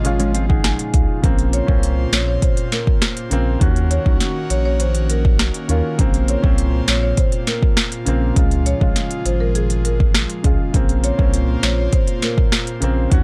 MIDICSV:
0, 0, Header, 1, 7, 480
1, 0, Start_track
1, 0, Key_signature, -5, "minor"
1, 0, Tempo, 594059
1, 999, Time_signature, 4, 2, 24, 8
1, 10693, End_track
2, 0, Start_track
2, 0, Title_t, "Marimba"
2, 0, Program_c, 0, 12
2, 1239, Note_on_c, 0, 73, 79
2, 1316, Note_off_c, 0, 73, 0
2, 1721, Note_on_c, 0, 73, 78
2, 1797, Note_off_c, 0, 73, 0
2, 1842, Note_on_c, 0, 73, 80
2, 1918, Note_off_c, 0, 73, 0
2, 1962, Note_on_c, 0, 72, 85
2, 2039, Note_off_c, 0, 72, 0
2, 2200, Note_on_c, 0, 70, 79
2, 2277, Note_off_c, 0, 70, 0
2, 3158, Note_on_c, 0, 73, 79
2, 3235, Note_off_c, 0, 73, 0
2, 3640, Note_on_c, 0, 73, 86
2, 3717, Note_off_c, 0, 73, 0
2, 3761, Note_on_c, 0, 73, 92
2, 3837, Note_off_c, 0, 73, 0
2, 3882, Note_on_c, 0, 72, 94
2, 3958, Note_off_c, 0, 72, 0
2, 4121, Note_on_c, 0, 70, 81
2, 4197, Note_off_c, 0, 70, 0
2, 4600, Note_on_c, 0, 70, 76
2, 4677, Note_off_c, 0, 70, 0
2, 5083, Note_on_c, 0, 73, 83
2, 5159, Note_off_c, 0, 73, 0
2, 5561, Note_on_c, 0, 73, 79
2, 5638, Note_off_c, 0, 73, 0
2, 5680, Note_on_c, 0, 73, 83
2, 5757, Note_off_c, 0, 73, 0
2, 5799, Note_on_c, 0, 72, 90
2, 5876, Note_off_c, 0, 72, 0
2, 6040, Note_on_c, 0, 70, 82
2, 6117, Note_off_c, 0, 70, 0
2, 6999, Note_on_c, 0, 73, 80
2, 7076, Note_off_c, 0, 73, 0
2, 7480, Note_on_c, 0, 72, 82
2, 7557, Note_off_c, 0, 72, 0
2, 7599, Note_on_c, 0, 70, 87
2, 7676, Note_off_c, 0, 70, 0
2, 7721, Note_on_c, 0, 68, 90
2, 7797, Note_off_c, 0, 68, 0
2, 7958, Note_on_c, 0, 70, 82
2, 8036, Note_off_c, 0, 70, 0
2, 8440, Note_on_c, 0, 68, 74
2, 8517, Note_off_c, 0, 68, 0
2, 8920, Note_on_c, 0, 73, 85
2, 8997, Note_off_c, 0, 73, 0
2, 9401, Note_on_c, 0, 73, 76
2, 9478, Note_off_c, 0, 73, 0
2, 9521, Note_on_c, 0, 73, 78
2, 9597, Note_off_c, 0, 73, 0
2, 9641, Note_on_c, 0, 72, 92
2, 9717, Note_off_c, 0, 72, 0
2, 9881, Note_on_c, 0, 70, 77
2, 9957, Note_off_c, 0, 70, 0
2, 10693, End_track
3, 0, Start_track
3, 0, Title_t, "Clean electric guitar"
3, 0, Program_c, 1, 27
3, 159, Note_on_c, 1, 61, 79
3, 163, Note_on_c, 1, 56, 66
3, 273, Note_off_c, 1, 61, 0
3, 275, Note_off_c, 1, 56, 0
3, 279, Note_on_c, 1, 65, 89
3, 284, Note_on_c, 1, 60, 75
3, 393, Note_off_c, 1, 65, 0
3, 396, Note_off_c, 1, 60, 0
3, 397, Note_on_c, 1, 68, 76
3, 402, Note_on_c, 1, 63, 65
3, 968, Note_off_c, 1, 68, 0
3, 971, Note_off_c, 1, 63, 0
3, 10693, End_track
4, 0, Start_track
4, 0, Title_t, "Grand piano"
4, 0, Program_c, 2, 0
4, 0, Control_c, 2, 64, 127
4, 0, Note_on_c, 2, 49, 81
4, 0, Note_on_c, 2, 56, 78
4, 0, Note_on_c, 2, 65, 93
4, 0, Note_on_c, 2, 75, 77
4, 25, Note_off_c, 2, 49, 0
4, 25, Note_on_c, 2, 49, 84
4, 39, Note_off_c, 2, 56, 0
4, 39, Note_on_c, 2, 56, 81
4, 39, Note_on_c, 2, 73, 74
4, 50, Note_off_c, 2, 65, 0
4, 50, Note_on_c, 2, 65, 96
4, 262, Note_off_c, 2, 73, 0
4, 279, Note_on_c, 2, 77, 72
4, 391, Note_off_c, 2, 77, 0
4, 399, Note_on_c, 2, 78, 71
4, 511, Note_off_c, 2, 78, 0
4, 517, Note_on_c, 2, 80, 76
4, 653, Note_off_c, 2, 49, 0
4, 660, Note_off_c, 2, 56, 0
4, 665, Note_off_c, 2, 65, 0
4, 741, Note_off_c, 2, 80, 0
4, 758, Note_on_c, 2, 77, 71
4, 982, Note_off_c, 2, 77, 0
4, 986, Note_on_c, 2, 49, 88
4, 998, Note_on_c, 2, 58, 84
4, 1010, Control_c, 2, 64, 0
4, 1011, Note_on_c, 2, 60, 98
4, 1016, Note_off_c, 2, 75, 0
4, 1141, Control_c, 2, 64, 127
4, 1225, Note_off_c, 2, 49, 0
4, 1231, Note_off_c, 2, 58, 0
4, 1238, Note_off_c, 2, 60, 0
4, 1345, Note_on_c, 2, 61, 79
4, 1357, Note_on_c, 2, 58, 70
4, 1370, Note_on_c, 2, 60, 88
4, 1973, Note_off_c, 2, 61, 0
4, 1979, Note_off_c, 2, 58, 0
4, 1985, Note_off_c, 2, 60, 0
4, 2665, Note_on_c, 2, 49, 91
4, 2678, Note_on_c, 2, 58, 86
4, 2689, Note_on_c, 2, 60, 106
4, 2827, Note_off_c, 2, 49, 0
4, 2834, Note_off_c, 2, 58, 0
4, 2839, Note_off_c, 2, 60, 0
4, 2907, Note_on_c, 2, 51, 91
4, 2918, Note_on_c, 2, 61, 81
4, 2928, Control_c, 2, 64, 0
4, 2931, Note_on_c, 2, 66, 99
4, 3049, Control_c, 2, 64, 127
4, 3146, Note_off_c, 2, 51, 0
4, 3151, Note_off_c, 2, 61, 0
4, 3158, Note_off_c, 2, 66, 0
4, 3266, Note_on_c, 2, 51, 81
4, 3280, Note_on_c, 2, 61, 72
4, 3291, Note_on_c, 2, 66, 85
4, 3893, Note_off_c, 2, 51, 0
4, 3900, Note_off_c, 2, 61, 0
4, 3906, Note_off_c, 2, 66, 0
4, 4588, Note_on_c, 2, 51, 75
4, 4600, Note_on_c, 2, 61, 73
4, 4612, Note_on_c, 2, 65, 86
4, 4749, Note_off_c, 2, 51, 0
4, 4755, Note_off_c, 2, 61, 0
4, 4761, Note_off_c, 2, 65, 0
4, 4827, Note_on_c, 2, 49, 90
4, 4840, Note_on_c, 2, 58, 85
4, 4851, Control_c, 2, 64, 0
4, 4852, Note_on_c, 2, 60, 97
4, 4994, Control_c, 2, 64, 127
4, 5066, Note_off_c, 2, 49, 0
4, 5072, Note_off_c, 2, 58, 0
4, 5078, Note_off_c, 2, 60, 0
4, 5187, Note_on_c, 2, 61, 80
4, 5200, Note_on_c, 2, 58, 72
4, 5213, Note_on_c, 2, 60, 90
4, 5814, Note_off_c, 2, 61, 0
4, 5820, Note_off_c, 2, 58, 0
4, 5827, Note_off_c, 2, 60, 0
4, 6506, Note_on_c, 2, 49, 98
4, 6518, Note_on_c, 2, 58, 84
4, 6531, Note_on_c, 2, 60, 99
4, 6668, Note_off_c, 2, 49, 0
4, 6674, Note_off_c, 2, 58, 0
4, 6680, Note_off_c, 2, 60, 0
4, 6747, Note_on_c, 2, 49, 90
4, 6760, Note_on_c, 2, 56, 83
4, 6769, Control_c, 2, 64, 0
4, 6772, Note_on_c, 2, 65, 97
4, 6936, Control_c, 2, 64, 127
4, 6986, Note_off_c, 2, 49, 0
4, 6992, Note_off_c, 2, 56, 0
4, 6998, Note_off_c, 2, 65, 0
4, 7107, Note_on_c, 2, 49, 82
4, 7119, Note_on_c, 2, 56, 73
4, 7132, Note_on_c, 2, 65, 88
4, 7734, Note_off_c, 2, 49, 0
4, 7740, Note_off_c, 2, 56, 0
4, 7746, Note_off_c, 2, 65, 0
4, 8427, Note_on_c, 2, 49, 79
4, 8441, Note_on_c, 2, 56, 72
4, 8453, Note_on_c, 2, 65, 87
4, 8588, Note_off_c, 2, 49, 0
4, 8595, Note_off_c, 2, 56, 0
4, 8601, Note_off_c, 2, 65, 0
4, 8667, Note_on_c, 2, 49, 86
4, 8680, Note_on_c, 2, 58, 79
4, 8688, Control_c, 2, 64, 0
4, 8692, Note_on_c, 2, 60, 98
4, 8824, Control_c, 2, 64, 127
4, 8906, Note_off_c, 2, 49, 0
4, 8912, Note_off_c, 2, 58, 0
4, 8918, Note_off_c, 2, 60, 0
4, 9029, Note_on_c, 2, 61, 78
4, 9041, Note_on_c, 2, 58, 73
4, 9053, Note_on_c, 2, 60, 87
4, 9655, Note_off_c, 2, 61, 0
4, 9661, Note_off_c, 2, 58, 0
4, 9667, Note_off_c, 2, 60, 0
4, 10345, Note_on_c, 2, 49, 93
4, 10358, Note_on_c, 2, 58, 85
4, 10370, Note_on_c, 2, 60, 103
4, 10507, Note_off_c, 2, 49, 0
4, 10514, Note_off_c, 2, 58, 0
4, 10520, Note_off_c, 2, 60, 0
4, 10586, Note_on_c, 2, 51, 88
4, 10597, Note_on_c, 2, 61, 84
4, 10609, Control_c, 2, 64, 0
4, 10611, Note_on_c, 2, 66, 102
4, 10693, Note_off_c, 2, 51, 0
4, 10693, Note_off_c, 2, 61, 0
4, 10693, Note_off_c, 2, 66, 0
4, 10693, End_track
5, 0, Start_track
5, 0, Title_t, "Analog synth pad"
5, 0, Program_c, 3, 89
5, 0, Note_on_c, 3, 46, 88
5, 0, Note_on_c, 3, 53, 75
5, 0, Note_on_c, 3, 56, 75
5, 0, Note_on_c, 3, 65, 92
5, 968, Note_off_c, 3, 46, 0
5, 968, Note_off_c, 3, 65, 0
5, 980, Note_off_c, 3, 53, 0
5, 981, Note_off_c, 3, 56, 0
5, 999, Note_on_c, 3, 65, 93
5, 999, Note_on_c, 3, 72, 76
5, 1001, Note_on_c, 3, 46, 86
5, 1001, Note_on_c, 3, 58, 78
5, 2900, Note_off_c, 3, 65, 0
5, 2900, Note_off_c, 3, 72, 0
5, 2901, Note_off_c, 3, 46, 0
5, 2921, Note_on_c, 3, 61, 77
5, 2924, Note_on_c, 3, 51, 82
5, 2924, Note_on_c, 3, 66, 97
5, 4821, Note_off_c, 3, 61, 0
5, 4822, Note_off_c, 3, 51, 0
5, 4823, Note_off_c, 3, 66, 0
5, 4839, Note_on_c, 3, 72, 76
5, 4841, Note_on_c, 3, 46, 85
5, 4841, Note_on_c, 3, 65, 90
5, 6728, Note_off_c, 3, 58, 0
5, 6740, Note_off_c, 3, 72, 0
5, 6761, Note_on_c, 3, 53, 77
5, 6761, Note_on_c, 3, 56, 75
5, 8648, Note_off_c, 3, 46, 0
5, 8648, Note_off_c, 3, 65, 0
5, 8661, Note_off_c, 3, 53, 0
5, 8661, Note_off_c, 3, 56, 0
5, 8683, Note_on_c, 3, 65, 96
5, 8683, Note_on_c, 3, 72, 78
5, 8684, Note_on_c, 3, 46, 83
5, 8685, Note_on_c, 3, 58, 78
5, 10582, Note_off_c, 3, 46, 0
5, 10582, Note_off_c, 3, 65, 0
5, 10582, Note_off_c, 3, 72, 0
5, 10583, Note_off_c, 3, 58, 0
5, 10598, Note_on_c, 3, 66, 94
5, 10599, Note_on_c, 3, 51, 83
5, 10599, Note_on_c, 3, 58, 78
5, 10599, Note_on_c, 3, 61, 78
5, 10693, Note_off_c, 3, 51, 0
5, 10693, Note_off_c, 3, 58, 0
5, 10693, Note_off_c, 3, 61, 0
5, 10693, Note_off_c, 3, 66, 0
5, 10693, End_track
6, 0, Start_track
6, 0, Title_t, "Analog synth bass"
6, 0, Program_c, 4, 38
6, 0, Note_on_c, 4, 32, 99
6, 608, Note_off_c, 4, 32, 0
6, 758, Note_on_c, 4, 37, 109
6, 860, Note_off_c, 4, 37, 0
6, 999, Note_on_c, 4, 34, 119
6, 1303, Note_off_c, 4, 34, 0
6, 1360, Note_on_c, 4, 36, 91
6, 1664, Note_off_c, 4, 36, 0
6, 1717, Note_on_c, 4, 34, 96
6, 1921, Note_off_c, 4, 34, 0
6, 2678, Note_on_c, 4, 34, 99
6, 2881, Note_off_c, 4, 34, 0
6, 2918, Note_on_c, 4, 39, 105
6, 3223, Note_off_c, 4, 39, 0
6, 3280, Note_on_c, 4, 36, 88
6, 3381, Note_off_c, 4, 36, 0
6, 3639, Note_on_c, 4, 34, 93
6, 4447, Note_off_c, 4, 34, 0
6, 4599, Note_on_c, 4, 39, 105
6, 4701, Note_off_c, 4, 39, 0
6, 4839, Note_on_c, 4, 34, 103
6, 5144, Note_off_c, 4, 34, 0
6, 5200, Note_on_c, 4, 36, 95
6, 5504, Note_off_c, 4, 36, 0
6, 5559, Note_on_c, 4, 34, 102
6, 5762, Note_off_c, 4, 34, 0
6, 6519, Note_on_c, 4, 34, 103
6, 6722, Note_off_c, 4, 34, 0
6, 6759, Note_on_c, 4, 37, 99
6, 7064, Note_off_c, 4, 37, 0
6, 7121, Note_on_c, 4, 34, 88
6, 7222, Note_off_c, 4, 34, 0
6, 7479, Note_on_c, 4, 32, 100
6, 8287, Note_off_c, 4, 32, 0
6, 8439, Note_on_c, 4, 37, 108
6, 8540, Note_off_c, 4, 37, 0
6, 8679, Note_on_c, 4, 34, 116
6, 8983, Note_off_c, 4, 34, 0
6, 9040, Note_on_c, 4, 36, 87
6, 9344, Note_off_c, 4, 36, 0
6, 9398, Note_on_c, 4, 34, 94
6, 9602, Note_off_c, 4, 34, 0
6, 10358, Note_on_c, 4, 34, 100
6, 10562, Note_off_c, 4, 34, 0
6, 10598, Note_on_c, 4, 39, 105
6, 10693, Note_off_c, 4, 39, 0
6, 10693, End_track
7, 0, Start_track
7, 0, Title_t, "Drums"
7, 38, Note_on_c, 9, 42, 73
7, 119, Note_off_c, 9, 42, 0
7, 158, Note_on_c, 9, 42, 59
7, 239, Note_off_c, 9, 42, 0
7, 279, Note_on_c, 9, 42, 73
7, 360, Note_off_c, 9, 42, 0
7, 402, Note_on_c, 9, 36, 97
7, 482, Note_off_c, 9, 36, 0
7, 519, Note_on_c, 9, 37, 90
7, 519, Note_on_c, 9, 38, 118
7, 520, Note_on_c, 9, 42, 82
7, 600, Note_off_c, 9, 37, 0
7, 600, Note_off_c, 9, 38, 0
7, 601, Note_off_c, 9, 42, 0
7, 640, Note_on_c, 9, 42, 57
7, 720, Note_off_c, 9, 42, 0
7, 757, Note_on_c, 9, 42, 75
7, 759, Note_on_c, 9, 36, 101
7, 838, Note_off_c, 9, 42, 0
7, 840, Note_off_c, 9, 36, 0
7, 999, Note_on_c, 9, 36, 110
7, 999, Note_on_c, 9, 42, 80
7, 1080, Note_off_c, 9, 36, 0
7, 1080, Note_off_c, 9, 42, 0
7, 1119, Note_on_c, 9, 42, 47
7, 1200, Note_off_c, 9, 42, 0
7, 1238, Note_on_c, 9, 42, 77
7, 1319, Note_off_c, 9, 42, 0
7, 1360, Note_on_c, 9, 36, 90
7, 1441, Note_off_c, 9, 36, 0
7, 1480, Note_on_c, 9, 42, 86
7, 1561, Note_off_c, 9, 42, 0
7, 1718, Note_on_c, 9, 42, 72
7, 1720, Note_on_c, 9, 38, 107
7, 1799, Note_off_c, 9, 42, 0
7, 1801, Note_off_c, 9, 38, 0
7, 1957, Note_on_c, 9, 42, 70
7, 1958, Note_on_c, 9, 36, 95
7, 2038, Note_off_c, 9, 42, 0
7, 2039, Note_off_c, 9, 36, 0
7, 2078, Note_on_c, 9, 42, 59
7, 2158, Note_off_c, 9, 42, 0
7, 2199, Note_on_c, 9, 42, 72
7, 2200, Note_on_c, 9, 38, 70
7, 2279, Note_off_c, 9, 42, 0
7, 2281, Note_off_c, 9, 38, 0
7, 2321, Note_on_c, 9, 36, 94
7, 2402, Note_off_c, 9, 36, 0
7, 2438, Note_on_c, 9, 37, 97
7, 2438, Note_on_c, 9, 38, 110
7, 2439, Note_on_c, 9, 42, 80
7, 2519, Note_off_c, 9, 37, 0
7, 2519, Note_off_c, 9, 38, 0
7, 2520, Note_off_c, 9, 42, 0
7, 2559, Note_on_c, 9, 42, 57
7, 2640, Note_off_c, 9, 42, 0
7, 2676, Note_on_c, 9, 42, 79
7, 2757, Note_off_c, 9, 42, 0
7, 2918, Note_on_c, 9, 36, 109
7, 2918, Note_on_c, 9, 42, 76
7, 2999, Note_off_c, 9, 36, 0
7, 2999, Note_off_c, 9, 42, 0
7, 3040, Note_on_c, 9, 42, 47
7, 3121, Note_off_c, 9, 42, 0
7, 3158, Note_on_c, 9, 42, 74
7, 3238, Note_off_c, 9, 42, 0
7, 3280, Note_on_c, 9, 36, 90
7, 3361, Note_off_c, 9, 36, 0
7, 3398, Note_on_c, 9, 38, 66
7, 3398, Note_on_c, 9, 42, 88
7, 3478, Note_off_c, 9, 38, 0
7, 3479, Note_off_c, 9, 42, 0
7, 3637, Note_on_c, 9, 42, 74
7, 3718, Note_off_c, 9, 42, 0
7, 3876, Note_on_c, 9, 42, 76
7, 3957, Note_off_c, 9, 42, 0
7, 3996, Note_on_c, 9, 42, 60
7, 4077, Note_off_c, 9, 42, 0
7, 4117, Note_on_c, 9, 42, 72
7, 4198, Note_off_c, 9, 42, 0
7, 4241, Note_on_c, 9, 36, 92
7, 4321, Note_off_c, 9, 36, 0
7, 4358, Note_on_c, 9, 37, 93
7, 4358, Note_on_c, 9, 38, 118
7, 4359, Note_on_c, 9, 42, 85
7, 4439, Note_off_c, 9, 37, 0
7, 4439, Note_off_c, 9, 38, 0
7, 4440, Note_off_c, 9, 42, 0
7, 4479, Note_on_c, 9, 42, 54
7, 4560, Note_off_c, 9, 42, 0
7, 4598, Note_on_c, 9, 42, 77
7, 4679, Note_off_c, 9, 42, 0
7, 4838, Note_on_c, 9, 42, 79
7, 4839, Note_on_c, 9, 36, 106
7, 4919, Note_off_c, 9, 42, 0
7, 4920, Note_off_c, 9, 36, 0
7, 4960, Note_on_c, 9, 42, 49
7, 5040, Note_off_c, 9, 42, 0
7, 5077, Note_on_c, 9, 42, 77
7, 5157, Note_off_c, 9, 42, 0
7, 5200, Note_on_c, 9, 36, 91
7, 5281, Note_off_c, 9, 36, 0
7, 5318, Note_on_c, 9, 42, 88
7, 5398, Note_off_c, 9, 42, 0
7, 5557, Note_on_c, 9, 42, 76
7, 5559, Note_on_c, 9, 38, 99
7, 5638, Note_off_c, 9, 42, 0
7, 5640, Note_off_c, 9, 38, 0
7, 5796, Note_on_c, 9, 42, 73
7, 5798, Note_on_c, 9, 36, 97
7, 5877, Note_off_c, 9, 42, 0
7, 5879, Note_off_c, 9, 36, 0
7, 5916, Note_on_c, 9, 42, 59
7, 5997, Note_off_c, 9, 42, 0
7, 6037, Note_on_c, 9, 42, 78
7, 6039, Note_on_c, 9, 38, 70
7, 6118, Note_off_c, 9, 42, 0
7, 6119, Note_off_c, 9, 38, 0
7, 6161, Note_on_c, 9, 36, 96
7, 6242, Note_off_c, 9, 36, 0
7, 6277, Note_on_c, 9, 37, 94
7, 6277, Note_on_c, 9, 38, 115
7, 6278, Note_on_c, 9, 42, 81
7, 6358, Note_off_c, 9, 37, 0
7, 6358, Note_off_c, 9, 38, 0
7, 6359, Note_off_c, 9, 42, 0
7, 6398, Note_on_c, 9, 42, 56
7, 6478, Note_off_c, 9, 42, 0
7, 6516, Note_on_c, 9, 42, 80
7, 6597, Note_off_c, 9, 42, 0
7, 6758, Note_on_c, 9, 42, 81
7, 6759, Note_on_c, 9, 36, 111
7, 6839, Note_off_c, 9, 36, 0
7, 6839, Note_off_c, 9, 42, 0
7, 6879, Note_on_c, 9, 42, 48
7, 6960, Note_off_c, 9, 42, 0
7, 6998, Note_on_c, 9, 42, 73
7, 7079, Note_off_c, 9, 42, 0
7, 7121, Note_on_c, 9, 36, 87
7, 7201, Note_off_c, 9, 36, 0
7, 7239, Note_on_c, 9, 38, 68
7, 7239, Note_on_c, 9, 42, 84
7, 7319, Note_off_c, 9, 38, 0
7, 7320, Note_off_c, 9, 42, 0
7, 7358, Note_on_c, 9, 42, 53
7, 7439, Note_off_c, 9, 42, 0
7, 7478, Note_on_c, 9, 42, 75
7, 7559, Note_off_c, 9, 42, 0
7, 7717, Note_on_c, 9, 42, 70
7, 7798, Note_off_c, 9, 42, 0
7, 7837, Note_on_c, 9, 42, 56
7, 7918, Note_off_c, 9, 42, 0
7, 7958, Note_on_c, 9, 42, 74
7, 8039, Note_off_c, 9, 42, 0
7, 8081, Note_on_c, 9, 36, 92
7, 8162, Note_off_c, 9, 36, 0
7, 8198, Note_on_c, 9, 37, 93
7, 8198, Note_on_c, 9, 38, 111
7, 8199, Note_on_c, 9, 42, 84
7, 8278, Note_off_c, 9, 37, 0
7, 8278, Note_off_c, 9, 38, 0
7, 8280, Note_off_c, 9, 42, 0
7, 8319, Note_on_c, 9, 42, 54
7, 8399, Note_off_c, 9, 42, 0
7, 8437, Note_on_c, 9, 42, 78
7, 8439, Note_on_c, 9, 36, 96
7, 8518, Note_off_c, 9, 42, 0
7, 8519, Note_off_c, 9, 36, 0
7, 8678, Note_on_c, 9, 42, 77
7, 8679, Note_on_c, 9, 36, 109
7, 8759, Note_off_c, 9, 36, 0
7, 8759, Note_off_c, 9, 42, 0
7, 8800, Note_on_c, 9, 42, 50
7, 8881, Note_off_c, 9, 42, 0
7, 8917, Note_on_c, 9, 42, 76
7, 8998, Note_off_c, 9, 42, 0
7, 9040, Note_on_c, 9, 36, 92
7, 9121, Note_off_c, 9, 36, 0
7, 9159, Note_on_c, 9, 42, 85
7, 9240, Note_off_c, 9, 42, 0
7, 9397, Note_on_c, 9, 42, 75
7, 9399, Note_on_c, 9, 38, 108
7, 9478, Note_off_c, 9, 42, 0
7, 9480, Note_off_c, 9, 38, 0
7, 9636, Note_on_c, 9, 42, 73
7, 9638, Note_on_c, 9, 36, 95
7, 9716, Note_off_c, 9, 42, 0
7, 9718, Note_off_c, 9, 36, 0
7, 9756, Note_on_c, 9, 42, 56
7, 9837, Note_off_c, 9, 42, 0
7, 9876, Note_on_c, 9, 42, 76
7, 9878, Note_on_c, 9, 38, 70
7, 9957, Note_off_c, 9, 42, 0
7, 9959, Note_off_c, 9, 38, 0
7, 10000, Note_on_c, 9, 36, 98
7, 10081, Note_off_c, 9, 36, 0
7, 10118, Note_on_c, 9, 37, 97
7, 10118, Note_on_c, 9, 38, 112
7, 10119, Note_on_c, 9, 42, 86
7, 10198, Note_off_c, 9, 37, 0
7, 10198, Note_off_c, 9, 38, 0
7, 10199, Note_off_c, 9, 42, 0
7, 10238, Note_on_c, 9, 42, 57
7, 10318, Note_off_c, 9, 42, 0
7, 10356, Note_on_c, 9, 42, 79
7, 10437, Note_off_c, 9, 42, 0
7, 10597, Note_on_c, 9, 42, 82
7, 10598, Note_on_c, 9, 36, 107
7, 10678, Note_off_c, 9, 36, 0
7, 10678, Note_off_c, 9, 42, 0
7, 10693, End_track
0, 0, End_of_file